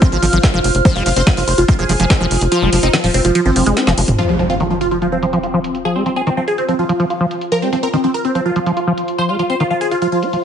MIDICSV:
0, 0, Header, 1, 7, 480
1, 0, Start_track
1, 0, Key_signature, -4, "minor"
1, 0, Tempo, 416667
1, 980, Time_signature, 4, 2, 24, 8
1, 12027, End_track
2, 0, Start_track
2, 0, Title_t, "Ambient pad"
2, 0, Program_c, 0, 92
2, 0, Note_on_c, 0, 65, 95
2, 0, Note_on_c, 0, 72, 91
2, 0, Note_on_c, 0, 89, 81
2, 4807, Note_off_c, 0, 65, 0
2, 4821, Note_off_c, 0, 72, 0
2, 4821, Note_on_c, 0, 65, 94
2, 4844, Note_off_c, 0, 89, 0
2, 5081, Note_on_c, 0, 72, 94
2, 5641, Note_on_c, 0, 84, 77
2, 12027, Note_off_c, 0, 65, 0
2, 12027, Note_off_c, 0, 72, 0
2, 12027, Note_off_c, 0, 84, 0
2, 12027, End_track
3, 0, Start_track
3, 0, Title_t, "Supersaw synth"
3, 0, Program_c, 1, 81
3, 21, Note_on_c, 1, 60, 65
3, 90, Note_off_c, 1, 60, 0
3, 140, Note_on_c, 1, 65, 98
3, 885, Note_off_c, 1, 65, 0
3, 980, Note_on_c, 1, 72, 105
3, 1050, Note_off_c, 1, 72, 0
3, 1100, Note_on_c, 1, 65, 62
3, 1170, Note_off_c, 1, 65, 0
3, 1220, Note_on_c, 1, 65, 68
3, 1290, Note_off_c, 1, 65, 0
3, 1340, Note_on_c, 1, 72, 97
3, 1410, Note_off_c, 1, 72, 0
3, 1461, Note_on_c, 1, 65, 67
3, 1530, Note_off_c, 1, 65, 0
3, 1580, Note_on_c, 1, 65, 66
3, 1650, Note_off_c, 1, 65, 0
3, 1700, Note_on_c, 1, 72, 92
3, 1770, Note_off_c, 1, 72, 0
3, 1820, Note_on_c, 1, 65, 64
3, 1890, Note_off_c, 1, 65, 0
3, 1940, Note_on_c, 1, 65, 67
3, 2010, Note_off_c, 1, 65, 0
3, 2060, Note_on_c, 1, 68, 101
3, 2804, Note_off_c, 1, 68, 0
3, 2900, Note_on_c, 1, 65, 105
3, 2970, Note_off_c, 1, 65, 0
3, 3020, Note_on_c, 1, 53, 62
3, 3090, Note_off_c, 1, 53, 0
3, 3140, Note_on_c, 1, 53, 68
3, 3210, Note_off_c, 1, 53, 0
3, 3260, Note_on_c, 1, 63, 95
3, 3330, Note_off_c, 1, 63, 0
3, 3381, Note_on_c, 1, 53, 65
3, 3450, Note_off_c, 1, 53, 0
3, 3500, Note_on_c, 1, 53, 66
3, 3570, Note_off_c, 1, 53, 0
3, 3621, Note_on_c, 1, 60, 92
3, 3690, Note_off_c, 1, 60, 0
3, 3741, Note_on_c, 1, 53, 66
3, 3810, Note_off_c, 1, 53, 0
3, 3861, Note_on_c, 1, 53, 66
3, 3930, Note_off_c, 1, 53, 0
3, 3981, Note_on_c, 1, 60, 102
3, 4725, Note_off_c, 1, 60, 0
3, 4821, Note_on_c, 1, 65, 98
3, 4890, Note_off_c, 1, 65, 0
3, 4941, Note_on_c, 1, 53, 62
3, 5010, Note_off_c, 1, 53, 0
3, 5061, Note_on_c, 1, 53, 65
3, 5130, Note_off_c, 1, 53, 0
3, 5180, Note_on_c, 1, 65, 92
3, 5250, Note_off_c, 1, 65, 0
3, 5301, Note_on_c, 1, 53, 61
3, 5370, Note_off_c, 1, 53, 0
3, 5420, Note_on_c, 1, 53, 64
3, 5490, Note_off_c, 1, 53, 0
3, 5541, Note_on_c, 1, 65, 93
3, 5610, Note_off_c, 1, 65, 0
3, 5660, Note_on_c, 1, 53, 64
3, 5730, Note_off_c, 1, 53, 0
3, 5781, Note_on_c, 1, 53, 64
3, 5850, Note_off_c, 1, 53, 0
3, 5900, Note_on_c, 1, 60, 97
3, 6645, Note_off_c, 1, 60, 0
3, 6741, Note_on_c, 1, 68, 102
3, 6810, Note_off_c, 1, 68, 0
3, 6861, Note_on_c, 1, 60, 60
3, 6930, Note_off_c, 1, 60, 0
3, 6981, Note_on_c, 1, 60, 64
3, 7050, Note_off_c, 1, 60, 0
3, 7100, Note_on_c, 1, 68, 93
3, 7170, Note_off_c, 1, 68, 0
3, 7221, Note_on_c, 1, 60, 62
3, 7290, Note_off_c, 1, 60, 0
3, 7341, Note_on_c, 1, 60, 65
3, 7410, Note_off_c, 1, 60, 0
3, 7461, Note_on_c, 1, 68, 90
3, 7530, Note_off_c, 1, 68, 0
3, 7581, Note_on_c, 1, 60, 61
3, 7650, Note_off_c, 1, 60, 0
3, 7702, Note_on_c, 1, 60, 62
3, 7771, Note_off_c, 1, 60, 0
3, 7822, Note_on_c, 1, 65, 99
3, 8565, Note_off_c, 1, 65, 0
3, 8661, Note_on_c, 1, 70, 102
3, 8730, Note_off_c, 1, 70, 0
3, 8781, Note_on_c, 1, 60, 63
3, 8850, Note_off_c, 1, 60, 0
3, 8901, Note_on_c, 1, 60, 64
3, 8970, Note_off_c, 1, 60, 0
3, 9020, Note_on_c, 1, 70, 94
3, 9090, Note_off_c, 1, 70, 0
3, 9141, Note_on_c, 1, 60, 62
3, 9210, Note_off_c, 1, 60, 0
3, 9261, Note_on_c, 1, 60, 64
3, 9330, Note_off_c, 1, 60, 0
3, 9381, Note_on_c, 1, 70, 91
3, 9450, Note_off_c, 1, 70, 0
3, 9501, Note_on_c, 1, 60, 60
3, 9570, Note_off_c, 1, 60, 0
3, 9621, Note_on_c, 1, 60, 63
3, 9691, Note_off_c, 1, 60, 0
3, 9741, Note_on_c, 1, 65, 96
3, 10485, Note_off_c, 1, 65, 0
3, 10581, Note_on_c, 1, 72, 101
3, 10650, Note_off_c, 1, 72, 0
3, 10701, Note_on_c, 1, 65, 63
3, 10770, Note_off_c, 1, 65, 0
3, 10821, Note_on_c, 1, 65, 65
3, 10890, Note_off_c, 1, 65, 0
3, 10941, Note_on_c, 1, 72, 96
3, 11010, Note_off_c, 1, 72, 0
3, 11060, Note_on_c, 1, 65, 63
3, 11130, Note_off_c, 1, 65, 0
3, 11180, Note_on_c, 1, 65, 64
3, 11250, Note_off_c, 1, 65, 0
3, 11301, Note_on_c, 1, 68, 94
3, 11370, Note_off_c, 1, 68, 0
3, 11421, Note_on_c, 1, 65, 61
3, 11490, Note_off_c, 1, 65, 0
3, 11541, Note_on_c, 1, 65, 64
3, 11610, Note_off_c, 1, 65, 0
3, 11660, Note_on_c, 1, 65, 96
3, 12027, Note_off_c, 1, 65, 0
3, 12027, End_track
4, 0, Start_track
4, 0, Title_t, "Acid bass"
4, 0, Program_c, 2, 38
4, 20, Note_on_c, 2, 53, 85
4, 82, Note_off_c, 2, 53, 0
4, 140, Note_on_c, 2, 53, 76
4, 202, Note_off_c, 2, 53, 0
4, 260, Note_on_c, 2, 53, 108
4, 297, Note_off_c, 2, 53, 0
4, 380, Note_on_c, 2, 53, 101
4, 442, Note_off_c, 2, 53, 0
4, 500, Note_on_c, 2, 65, 85
4, 537, Note_off_c, 2, 65, 0
4, 620, Note_on_c, 2, 53, 101
4, 682, Note_off_c, 2, 53, 0
4, 981, Note_on_c, 2, 53, 80
4, 1101, Note_on_c, 2, 56, 76
4, 1118, Note_off_c, 2, 53, 0
4, 1193, Note_off_c, 2, 56, 0
4, 1221, Note_on_c, 2, 53, 79
4, 1258, Note_off_c, 2, 53, 0
4, 1341, Note_on_c, 2, 60, 77
4, 1402, Note_off_c, 2, 60, 0
4, 1461, Note_on_c, 2, 51, 101
4, 1498, Note_off_c, 2, 51, 0
4, 1581, Note_on_c, 2, 53, 77
4, 1618, Note_off_c, 2, 53, 0
4, 1941, Note_on_c, 2, 53, 85
4, 2002, Note_off_c, 2, 53, 0
4, 2061, Note_on_c, 2, 53, 77
4, 2122, Note_off_c, 2, 53, 0
4, 2181, Note_on_c, 2, 53, 109
4, 2218, Note_off_c, 2, 53, 0
4, 2301, Note_on_c, 2, 53, 105
4, 2362, Note_off_c, 2, 53, 0
4, 2421, Note_on_c, 2, 65, 80
4, 2457, Note_off_c, 2, 65, 0
4, 2541, Note_on_c, 2, 53, 102
4, 2602, Note_off_c, 2, 53, 0
4, 2901, Note_on_c, 2, 53, 79
4, 3021, Note_on_c, 2, 56, 77
4, 3039, Note_off_c, 2, 53, 0
4, 3113, Note_off_c, 2, 56, 0
4, 3142, Note_on_c, 2, 53, 78
4, 3178, Note_off_c, 2, 53, 0
4, 3261, Note_on_c, 2, 60, 78
4, 3322, Note_off_c, 2, 60, 0
4, 3381, Note_on_c, 2, 51, 101
4, 3418, Note_off_c, 2, 51, 0
4, 3501, Note_on_c, 2, 53, 77
4, 3538, Note_off_c, 2, 53, 0
4, 3861, Note_on_c, 2, 53, 84
4, 3922, Note_off_c, 2, 53, 0
4, 3981, Note_on_c, 2, 53, 77
4, 4042, Note_off_c, 2, 53, 0
4, 4101, Note_on_c, 2, 53, 80
4, 4193, Note_off_c, 2, 53, 0
4, 4221, Note_on_c, 2, 56, 104
4, 4341, Note_on_c, 2, 65, 86
4, 4358, Note_off_c, 2, 56, 0
4, 4433, Note_off_c, 2, 65, 0
4, 4461, Note_on_c, 2, 53, 105
4, 4522, Note_off_c, 2, 53, 0
4, 4581, Note_on_c, 2, 53, 77
4, 4618, Note_off_c, 2, 53, 0
4, 4821, Note_on_c, 2, 53, 77
4, 4941, Note_on_c, 2, 56, 72
4, 4958, Note_off_c, 2, 53, 0
4, 5033, Note_off_c, 2, 56, 0
4, 5061, Note_on_c, 2, 53, 77
4, 5098, Note_off_c, 2, 53, 0
4, 5180, Note_on_c, 2, 60, 75
4, 5242, Note_off_c, 2, 60, 0
4, 5301, Note_on_c, 2, 51, 98
4, 5338, Note_off_c, 2, 51, 0
4, 5421, Note_on_c, 2, 53, 74
4, 5458, Note_off_c, 2, 53, 0
4, 5781, Note_on_c, 2, 53, 81
4, 5842, Note_off_c, 2, 53, 0
4, 5901, Note_on_c, 2, 53, 75
4, 5962, Note_off_c, 2, 53, 0
4, 6021, Note_on_c, 2, 53, 102
4, 6058, Note_off_c, 2, 53, 0
4, 6141, Note_on_c, 2, 53, 99
4, 6202, Note_off_c, 2, 53, 0
4, 6260, Note_on_c, 2, 65, 83
4, 6297, Note_off_c, 2, 65, 0
4, 6381, Note_on_c, 2, 53, 100
4, 6442, Note_off_c, 2, 53, 0
4, 6740, Note_on_c, 2, 53, 77
4, 6861, Note_on_c, 2, 56, 72
4, 6878, Note_off_c, 2, 53, 0
4, 6953, Note_off_c, 2, 56, 0
4, 6981, Note_on_c, 2, 53, 80
4, 7018, Note_off_c, 2, 53, 0
4, 7101, Note_on_c, 2, 60, 74
4, 7162, Note_off_c, 2, 60, 0
4, 7220, Note_on_c, 2, 51, 96
4, 7257, Note_off_c, 2, 51, 0
4, 7341, Note_on_c, 2, 53, 77
4, 7378, Note_off_c, 2, 53, 0
4, 7701, Note_on_c, 2, 53, 82
4, 7762, Note_off_c, 2, 53, 0
4, 7820, Note_on_c, 2, 53, 73
4, 7882, Note_off_c, 2, 53, 0
4, 7940, Note_on_c, 2, 53, 103
4, 7977, Note_off_c, 2, 53, 0
4, 8060, Note_on_c, 2, 53, 102
4, 8122, Note_off_c, 2, 53, 0
4, 8180, Note_on_c, 2, 65, 81
4, 8217, Note_off_c, 2, 65, 0
4, 8301, Note_on_c, 2, 53, 98
4, 8362, Note_off_c, 2, 53, 0
4, 8661, Note_on_c, 2, 53, 77
4, 8781, Note_on_c, 2, 56, 72
4, 8798, Note_off_c, 2, 53, 0
4, 8873, Note_off_c, 2, 56, 0
4, 8901, Note_on_c, 2, 53, 76
4, 8938, Note_off_c, 2, 53, 0
4, 9021, Note_on_c, 2, 60, 75
4, 9082, Note_off_c, 2, 60, 0
4, 9141, Note_on_c, 2, 51, 96
4, 9178, Note_off_c, 2, 51, 0
4, 9260, Note_on_c, 2, 53, 73
4, 9297, Note_off_c, 2, 53, 0
4, 9621, Note_on_c, 2, 53, 84
4, 9682, Note_off_c, 2, 53, 0
4, 9740, Note_on_c, 2, 53, 75
4, 9802, Note_off_c, 2, 53, 0
4, 9861, Note_on_c, 2, 53, 100
4, 9898, Note_off_c, 2, 53, 0
4, 9981, Note_on_c, 2, 53, 101
4, 10042, Note_off_c, 2, 53, 0
4, 10101, Note_on_c, 2, 65, 82
4, 10138, Note_off_c, 2, 65, 0
4, 10221, Note_on_c, 2, 53, 98
4, 10282, Note_off_c, 2, 53, 0
4, 10581, Note_on_c, 2, 53, 78
4, 10701, Note_on_c, 2, 56, 72
4, 10718, Note_off_c, 2, 53, 0
4, 10793, Note_off_c, 2, 56, 0
4, 10821, Note_on_c, 2, 53, 75
4, 10858, Note_off_c, 2, 53, 0
4, 10941, Note_on_c, 2, 60, 74
4, 11002, Note_off_c, 2, 60, 0
4, 11061, Note_on_c, 2, 51, 99
4, 11098, Note_off_c, 2, 51, 0
4, 11181, Note_on_c, 2, 53, 74
4, 11218, Note_off_c, 2, 53, 0
4, 11541, Note_on_c, 2, 53, 81
4, 11602, Note_off_c, 2, 53, 0
4, 11661, Note_on_c, 2, 53, 73
4, 11781, Note_on_c, 2, 66, 81
4, 11798, Note_off_c, 2, 53, 0
4, 11842, Note_off_c, 2, 66, 0
4, 11901, Note_on_c, 2, 53, 77
4, 11938, Note_off_c, 2, 53, 0
4, 12027, End_track
5, 0, Start_track
5, 0, Title_t, "Analog synth bass"
5, 0, Program_c, 3, 38
5, 141, Note_on_c, 3, 32, 85
5, 213, Note_off_c, 3, 32, 0
5, 261, Note_on_c, 3, 32, 101
5, 332, Note_off_c, 3, 32, 0
5, 381, Note_on_c, 3, 32, 95
5, 453, Note_off_c, 3, 32, 0
5, 621, Note_on_c, 3, 29, 91
5, 692, Note_off_c, 3, 29, 0
5, 741, Note_on_c, 3, 29, 105
5, 813, Note_off_c, 3, 29, 0
5, 861, Note_on_c, 3, 29, 92
5, 932, Note_off_c, 3, 29, 0
5, 1101, Note_on_c, 3, 29, 85
5, 1172, Note_off_c, 3, 29, 0
5, 1221, Note_on_c, 3, 29, 102
5, 1292, Note_off_c, 3, 29, 0
5, 1341, Note_on_c, 3, 29, 96
5, 1412, Note_off_c, 3, 29, 0
5, 1581, Note_on_c, 3, 29, 92
5, 1653, Note_off_c, 3, 29, 0
5, 1701, Note_on_c, 3, 29, 101
5, 1773, Note_off_c, 3, 29, 0
5, 1821, Note_on_c, 3, 29, 94
5, 1893, Note_off_c, 3, 29, 0
5, 2061, Note_on_c, 3, 29, 85
5, 2133, Note_off_c, 3, 29, 0
5, 2181, Note_on_c, 3, 29, 102
5, 2253, Note_off_c, 3, 29, 0
5, 2301, Note_on_c, 3, 29, 97
5, 2372, Note_off_c, 3, 29, 0
5, 2541, Note_on_c, 3, 29, 92
5, 2612, Note_off_c, 3, 29, 0
5, 2661, Note_on_c, 3, 29, 103
5, 2732, Note_off_c, 3, 29, 0
5, 2781, Note_on_c, 3, 29, 93
5, 2852, Note_off_c, 3, 29, 0
5, 3021, Note_on_c, 3, 29, 84
5, 3093, Note_off_c, 3, 29, 0
5, 3140, Note_on_c, 3, 29, 103
5, 3212, Note_off_c, 3, 29, 0
5, 3260, Note_on_c, 3, 29, 95
5, 3332, Note_off_c, 3, 29, 0
5, 3500, Note_on_c, 3, 27, 89
5, 3572, Note_off_c, 3, 27, 0
5, 3621, Note_on_c, 3, 29, 99
5, 3692, Note_off_c, 3, 29, 0
5, 3741, Note_on_c, 3, 29, 95
5, 3812, Note_off_c, 3, 29, 0
5, 3981, Note_on_c, 3, 32, 87
5, 4052, Note_off_c, 3, 32, 0
5, 4101, Note_on_c, 3, 29, 102
5, 4172, Note_off_c, 3, 29, 0
5, 4221, Note_on_c, 3, 29, 96
5, 4292, Note_off_c, 3, 29, 0
5, 4461, Note_on_c, 3, 29, 91
5, 4532, Note_off_c, 3, 29, 0
5, 4581, Note_on_c, 3, 29, 104
5, 4652, Note_off_c, 3, 29, 0
5, 4701, Note_on_c, 3, 29, 91
5, 4772, Note_off_c, 3, 29, 0
5, 12027, End_track
6, 0, Start_track
6, 0, Title_t, "Impact"
6, 0, Program_c, 4, 103
6, 4821, Note_on_c, 4, 60, 69
6, 6741, Note_off_c, 4, 60, 0
6, 12027, End_track
7, 0, Start_track
7, 0, Title_t, "Drums"
7, 21, Note_on_c, 9, 36, 118
7, 21, Note_on_c, 9, 42, 67
7, 136, Note_off_c, 9, 36, 0
7, 136, Note_off_c, 9, 42, 0
7, 261, Note_on_c, 9, 46, 100
7, 376, Note_off_c, 9, 46, 0
7, 381, Note_on_c, 9, 42, 67
7, 496, Note_off_c, 9, 42, 0
7, 501, Note_on_c, 9, 36, 114
7, 501, Note_on_c, 9, 38, 114
7, 501, Note_on_c, 9, 42, 70
7, 616, Note_off_c, 9, 36, 0
7, 616, Note_off_c, 9, 38, 0
7, 616, Note_off_c, 9, 42, 0
7, 741, Note_on_c, 9, 46, 109
7, 856, Note_off_c, 9, 46, 0
7, 861, Note_on_c, 9, 42, 66
7, 976, Note_off_c, 9, 42, 0
7, 981, Note_on_c, 9, 36, 115
7, 981, Note_on_c, 9, 42, 69
7, 1096, Note_off_c, 9, 36, 0
7, 1096, Note_off_c, 9, 42, 0
7, 1221, Note_on_c, 9, 46, 103
7, 1336, Note_off_c, 9, 46, 0
7, 1341, Note_on_c, 9, 42, 73
7, 1456, Note_off_c, 9, 42, 0
7, 1461, Note_on_c, 9, 36, 113
7, 1461, Note_on_c, 9, 38, 120
7, 1461, Note_on_c, 9, 42, 71
7, 1576, Note_off_c, 9, 36, 0
7, 1576, Note_off_c, 9, 38, 0
7, 1576, Note_off_c, 9, 42, 0
7, 1581, Note_on_c, 9, 46, 59
7, 1696, Note_off_c, 9, 46, 0
7, 1701, Note_on_c, 9, 46, 108
7, 1816, Note_off_c, 9, 46, 0
7, 1820, Note_on_c, 9, 42, 69
7, 1936, Note_off_c, 9, 42, 0
7, 1941, Note_on_c, 9, 36, 114
7, 1941, Note_on_c, 9, 42, 70
7, 2056, Note_off_c, 9, 36, 0
7, 2056, Note_off_c, 9, 42, 0
7, 2181, Note_on_c, 9, 46, 100
7, 2296, Note_off_c, 9, 46, 0
7, 2301, Note_on_c, 9, 42, 74
7, 2416, Note_off_c, 9, 42, 0
7, 2421, Note_on_c, 9, 36, 110
7, 2421, Note_on_c, 9, 38, 123
7, 2421, Note_on_c, 9, 42, 70
7, 2536, Note_off_c, 9, 36, 0
7, 2536, Note_off_c, 9, 38, 0
7, 2536, Note_off_c, 9, 42, 0
7, 2660, Note_on_c, 9, 46, 108
7, 2776, Note_off_c, 9, 46, 0
7, 2780, Note_on_c, 9, 42, 66
7, 2896, Note_off_c, 9, 42, 0
7, 2900, Note_on_c, 9, 42, 73
7, 3016, Note_off_c, 9, 42, 0
7, 3140, Note_on_c, 9, 46, 104
7, 3256, Note_off_c, 9, 46, 0
7, 3261, Note_on_c, 9, 42, 74
7, 3376, Note_off_c, 9, 42, 0
7, 3381, Note_on_c, 9, 38, 124
7, 3381, Note_on_c, 9, 42, 71
7, 3496, Note_off_c, 9, 38, 0
7, 3496, Note_off_c, 9, 42, 0
7, 3501, Note_on_c, 9, 46, 62
7, 3616, Note_off_c, 9, 46, 0
7, 3621, Note_on_c, 9, 46, 106
7, 3736, Note_off_c, 9, 46, 0
7, 3741, Note_on_c, 9, 42, 72
7, 3856, Note_off_c, 9, 42, 0
7, 3861, Note_on_c, 9, 42, 72
7, 3976, Note_off_c, 9, 42, 0
7, 4101, Note_on_c, 9, 46, 102
7, 4216, Note_off_c, 9, 46, 0
7, 4221, Note_on_c, 9, 42, 73
7, 4336, Note_off_c, 9, 42, 0
7, 4341, Note_on_c, 9, 38, 65
7, 4341, Note_on_c, 9, 42, 71
7, 4456, Note_off_c, 9, 38, 0
7, 4456, Note_off_c, 9, 42, 0
7, 4460, Note_on_c, 9, 38, 65
7, 4576, Note_off_c, 9, 38, 0
7, 4580, Note_on_c, 9, 46, 110
7, 4696, Note_off_c, 9, 46, 0
7, 4701, Note_on_c, 9, 42, 69
7, 4701, Note_on_c, 9, 45, 85
7, 4816, Note_off_c, 9, 42, 0
7, 4816, Note_off_c, 9, 45, 0
7, 4821, Note_on_c, 9, 42, 68
7, 4936, Note_off_c, 9, 42, 0
7, 5060, Note_on_c, 9, 42, 94
7, 5175, Note_off_c, 9, 42, 0
7, 5181, Note_on_c, 9, 42, 67
7, 5296, Note_off_c, 9, 42, 0
7, 5300, Note_on_c, 9, 42, 68
7, 5416, Note_off_c, 9, 42, 0
7, 5540, Note_on_c, 9, 42, 93
7, 5656, Note_off_c, 9, 42, 0
7, 5660, Note_on_c, 9, 42, 65
7, 5775, Note_off_c, 9, 42, 0
7, 5780, Note_on_c, 9, 42, 66
7, 5895, Note_off_c, 9, 42, 0
7, 6020, Note_on_c, 9, 42, 94
7, 6136, Note_off_c, 9, 42, 0
7, 6140, Note_on_c, 9, 42, 70
7, 6255, Note_off_c, 9, 42, 0
7, 6260, Note_on_c, 9, 42, 66
7, 6376, Note_off_c, 9, 42, 0
7, 6500, Note_on_c, 9, 42, 94
7, 6616, Note_off_c, 9, 42, 0
7, 6621, Note_on_c, 9, 42, 64
7, 6736, Note_off_c, 9, 42, 0
7, 6740, Note_on_c, 9, 42, 67
7, 6856, Note_off_c, 9, 42, 0
7, 6981, Note_on_c, 9, 42, 93
7, 7096, Note_off_c, 9, 42, 0
7, 7101, Note_on_c, 9, 42, 67
7, 7216, Note_off_c, 9, 42, 0
7, 7221, Note_on_c, 9, 42, 66
7, 7336, Note_off_c, 9, 42, 0
7, 7461, Note_on_c, 9, 42, 94
7, 7576, Note_off_c, 9, 42, 0
7, 7581, Note_on_c, 9, 42, 63
7, 7696, Note_off_c, 9, 42, 0
7, 7701, Note_on_c, 9, 42, 64
7, 7816, Note_off_c, 9, 42, 0
7, 7941, Note_on_c, 9, 42, 91
7, 8056, Note_off_c, 9, 42, 0
7, 8061, Note_on_c, 9, 42, 67
7, 8176, Note_off_c, 9, 42, 0
7, 8181, Note_on_c, 9, 42, 68
7, 8296, Note_off_c, 9, 42, 0
7, 8421, Note_on_c, 9, 42, 93
7, 8536, Note_off_c, 9, 42, 0
7, 8541, Note_on_c, 9, 42, 66
7, 8656, Note_off_c, 9, 42, 0
7, 8661, Note_on_c, 9, 42, 66
7, 8776, Note_off_c, 9, 42, 0
7, 8901, Note_on_c, 9, 42, 88
7, 9016, Note_off_c, 9, 42, 0
7, 9021, Note_on_c, 9, 42, 66
7, 9136, Note_off_c, 9, 42, 0
7, 9140, Note_on_c, 9, 42, 63
7, 9256, Note_off_c, 9, 42, 0
7, 9380, Note_on_c, 9, 42, 88
7, 9496, Note_off_c, 9, 42, 0
7, 9501, Note_on_c, 9, 42, 61
7, 9616, Note_off_c, 9, 42, 0
7, 9621, Note_on_c, 9, 42, 63
7, 9736, Note_off_c, 9, 42, 0
7, 9860, Note_on_c, 9, 42, 88
7, 9976, Note_off_c, 9, 42, 0
7, 9981, Note_on_c, 9, 42, 62
7, 10096, Note_off_c, 9, 42, 0
7, 10100, Note_on_c, 9, 42, 64
7, 10216, Note_off_c, 9, 42, 0
7, 10340, Note_on_c, 9, 42, 91
7, 10456, Note_off_c, 9, 42, 0
7, 10461, Note_on_c, 9, 42, 61
7, 10576, Note_off_c, 9, 42, 0
7, 10581, Note_on_c, 9, 42, 62
7, 10696, Note_off_c, 9, 42, 0
7, 10820, Note_on_c, 9, 42, 85
7, 10936, Note_off_c, 9, 42, 0
7, 10940, Note_on_c, 9, 42, 62
7, 11056, Note_off_c, 9, 42, 0
7, 11060, Note_on_c, 9, 42, 63
7, 11176, Note_off_c, 9, 42, 0
7, 11301, Note_on_c, 9, 42, 88
7, 11416, Note_off_c, 9, 42, 0
7, 11420, Note_on_c, 9, 42, 64
7, 11536, Note_off_c, 9, 42, 0
7, 11540, Note_on_c, 9, 42, 61
7, 11656, Note_off_c, 9, 42, 0
7, 11780, Note_on_c, 9, 42, 82
7, 11896, Note_off_c, 9, 42, 0
7, 11900, Note_on_c, 9, 42, 61
7, 12016, Note_off_c, 9, 42, 0
7, 12027, End_track
0, 0, End_of_file